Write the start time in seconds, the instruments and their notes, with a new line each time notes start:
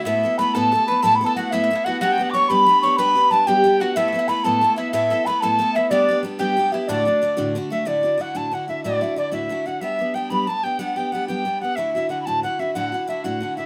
0.05 steel-string acoustic guitar A2 A3 B3 E4 A4, mandolin E4, tin whistle E5, flute E5
0.23 steel-string acoustic guitar B3 E4 A4
0.38 steel-string acoustic guitar A3 B3 E4 A4, mandolin B4, flute B5, tin whistle B5
0.54 steel-string acoustic guitar A2 A3 B3 E4 A4, mandolin A4, tin whistle A5, flute A5
0.72 steel-string acoustic guitar A3 B3 E4 A4, mandolin A4
0.87 steel-string acoustic guitar E4 A4, mandolin B4, flute B5
0.91 steel-string acoustic guitar B3
1.03 steel-string acoustic guitar A2 A3 B3 E4 A4, mandolin A4, flute A5, tin whistle A5
1.15 flute B5
1.21 steel-string acoustic guitar B3 E4 A4
1.25 mandolin A4, flute A5, tin whistle A5
1.36 steel-string acoustic guitar A3 B3 E4 A4, mandolin F#4, flute F#5, tin whistle F#5
1.51 steel-string acoustic guitar A2 A3 B3 E4 A4, mandolin E4, flute E5, tin whistle E5
1.64 mandolin E4
1.71 steel-string acoustic guitar A3 B3 E4 A4
1.75 mandolin E4
1.85 steel-string acoustic guitar E4 A4, mandolin F#4, tin whistle F#5, flute F#5
1.89 steel-string acoustic guitar B3
2.00 steel-string acoustic guitar G3 B3 D4 G4, mandolin F#4, flute F#5, tin whistle F#5
2.12 tin whistle G5
2.18 steel-string acoustic guitar B3 D4 G4
2.23 tin whistle F#5
2.30 steel-string acoustic guitar G3, flute C#6, tin whistle D6
2.34 steel-string acoustic guitar B3 D4 G4, mandolin C#5, tin whistle C#6
2.49 steel-string acoustic guitar G3 B3 D4 G4, mandolin B4, flute B5, tin whistle B5
2.66 steel-string acoustic guitar G3 B3 D4 G4
2.82 steel-string acoustic guitar B3 D4 G4, mandolin C#5, flute C#6
2.97 steel-string acoustic guitar G3 B3 D4 G4, mandolin B4, flute B5, tin whistle B5
3.15 steel-string acoustic guitar B3 D4 G4
3.31 steel-string acoustic guitar G3 B3 D4 G4, flute A5, tin whistle A5
3.47 steel-string acoustic guitar G3 B3 D4 G4, mandolin G4, flute G5, tin whistle G5
3.64 steel-string acoustic guitar G3 B3 D4 G4
3.80 steel-string acoustic guitar B3 D4 G4, mandolin F#4, flute F#5, tin whistle F#5
3.95 steel-string acoustic guitar A2 A3 B3 E4 A4, mandolin E4, flute E5, tin whistle E5
4.08 mandolin E4
4.13 steel-string acoustic guitar B3 A4
4.19 mandolin E4
4.28 steel-string acoustic guitar A3 B3 E4 A4, mandolin B4, flute B5, tin whistle B5
4.44 steel-string acoustic guitar A2 A3 B3 E4 A4, mandolin A4, flute A5, tin whistle A5
4.61 steel-string acoustic guitar A3 B3 E4 A4
4.76 steel-string acoustic guitar B3 E4 A4, mandolin E4, flute E5, tin whistle E5
4.92 steel-string acoustic guitar A2 A3 B3 E4 A4, mandolin E4, flute E5, tin whistle E5
5.10 steel-string acoustic guitar B3 E4 A4, mandolin A4
5.25 steel-string acoustic guitar A3 B3 E4, mandolin B4, flute B5, tin whistle B5
5.30 steel-string acoustic guitar A4
5.40 steel-string acoustic guitar A2 A3 B3 E4 A4, mandolin A4, flute A5, tin whistle A5
5.59 steel-string acoustic guitar A3 B3 E4 A4
5.74 steel-string acoustic guitar B3 E4 A4, mandolin E4, flute E5, tin whistle E5
5.90 steel-string acoustic guitar G3 B3 D4 G4, mandolin D4, flute D5, tin whistle D5
6.09 steel-string acoustic guitar B3 D4 G4
6.23 steel-string acoustic guitar G3 B3 D4 G4
6.39 steel-string acoustic guitar G3 B3 D4 G4, mandolin G4, flute G5, tin whistle G5
6.57 steel-string acoustic guitar G3 B3 D4 G4
6.72 steel-string acoustic guitar B3 D4 G4, mandolin E4, flute E5
6.88 steel-string acoustic guitar D2 A2 D3 A3 D4 F#4, mandolin D4, flute D5, tin whistle D5
7.05 steel-string acoustic guitar D3 A3 D4 F#4
7.22 steel-string acoustic guitar D3 A3 D4 F#4
7.37 steel-string acoustic guitar D2 A2 D3 A3 D4 F#4
7.55 steel-string acoustic guitar D3 A3 D4 F#4
7.70 steel-string acoustic guitar D3 A3 D4 F#4, tin whistle E5, flute E5
7.85 steel-string acoustic guitar D2 A2 D3 D4 E4 F#4, tin whistle D5, flute D5
8.03 steel-string acoustic guitar D3 D4 E4 F#4
8.18 steel-string acoustic guitar D3 D4 E4 F#4, tin whistle F#5, flute F#5
8.35 steel-string acoustic guitar D2 A2 D3 D4 E4 F#4, tin whistle A5, flute A5
8.51 steel-string acoustic guitar D3 D4 E4 F#4, tin whistle F#5, flute F#5
8.68 steel-string acoustic guitar D3 D4 E4 F#4, tin whistle E5, flute E5
8.84 steel-string acoustic guitar D2 A2 D3 D4 E4 F#4, tin whistle D5, flute D5
9.01 steel-string acoustic guitar D3 D4 E4 F#4, flute E5
9.16 steel-string acoustic guitar D3 D4 E4 F#4, tin whistle D5, flute D5
9.31 steel-string acoustic guitar D2 A2 D3 D4 E4 F#4, tin whistle E5, flute E5
9.49 steel-string acoustic guitar D3 D4 E4 F#4
9.66 steel-string acoustic guitar D3 D4 E4 F#4, tin whistle F#5, flute F#5
9.81 steel-string acoustic guitar G3 B3 D4 G4, tin whistle E5, flute E5
9.99 steel-string acoustic guitar B3 D4 G4
10.14 steel-string acoustic guitar G3 B3 D4 G4, tin whistle G5, flute G5
10.30 steel-string acoustic guitar G3 B3 D4 G4, tin whistle B5, flute B5
10.47 steel-string acoustic guitar G3 B3 D4 G4, tin whistle A5, flute A5
10.63 steel-string acoustic guitar B3 D4 G4, tin whistle G5, flute G5
10.79 steel-string acoustic guitar G3 B3 D4 G4, tin whistle F#5, flute F#5
10.96 steel-string acoustic guitar B3 D4 G4, tin whistle G5, flute G5
11.12 steel-string acoustic guitar G3 B3 D4 G4, tin whistle F#5, flute F#5
11.28 steel-string acoustic guitar G3 B3 D4 G4, tin whistle G5, flute G5
11.45 steel-string acoustic guitar G3 B3 D4 G4
11.61 steel-string acoustic guitar B3 D4 G4, tin whistle F#5, flute F#5
11.76 steel-string acoustic guitar D2 A2 D3 D4 E4 F#4, tin whistle E5, flute E5
11.94 steel-string acoustic guitar D4 E4 F#4, tin whistle E5
11.98 steel-string acoustic guitar D3
12.09 steel-string acoustic guitar D3 D4 E4 F#4, tin whistle F#5, flute F#5
12.22 tin whistle A5 B5
12.27 steel-string acoustic guitar D2 A2 D3 D4 E4 F#4, flute A5
12.43 steel-string acoustic guitar D3 D4 E4 F#4, tin whistle F#5, flute F#5
12.59 steel-string acoustic guitar D3 D4 E4 F#4, tin whistle E5, flute E5
12.74 steel-string acoustic guitar D2 A2 D3 D4 E4 F#4, tin whistle F#5, flute F#5
12.92 steel-string acoustic guitar D3 D4 E4 F#4, flute F#5
13.07 steel-string acoustic guitar D3 D4 E4 F#4, tin whistle E5, flute E5
13.24 steel-string acoustic guitar D2 A2 D3 D4 E4 F#4, tin whistle F#5, flute F#5
13.40 steel-string acoustic guitar D3 D4 E4 F#4
13.57 steel-string acoustic guitar D3 D4 E4 F#4, tin whistle E5, flute E5